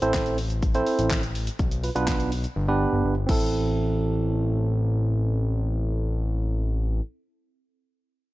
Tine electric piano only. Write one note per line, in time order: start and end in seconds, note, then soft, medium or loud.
0.02 0.36 C4 loud
0.02 0.36 E4 loud
0.02 0.36 A4 loud
0.02 0.36 C5 loud
0.75 1.20 C4 loud
0.75 1.20 E4 medium
0.75 1.20 A4 medium
0.75 1.21 C5 loud
1.83 1.89 F4 medium
1.83 1.89 B4 loud
1.95 2.30 B3 loud
1.95 2.30 D4 medium
1.95 2.30 F4 medium
1.95 2.30 B4 loud
2.68 3.14 B3 loud
2.68 3.14 D4 medium
2.68 3.14 G4 medium
2.68 3.14 B4 loud
3.27 6.99 C4 medium
3.27 7.01 E4 medium
3.31 7.03 A4 loud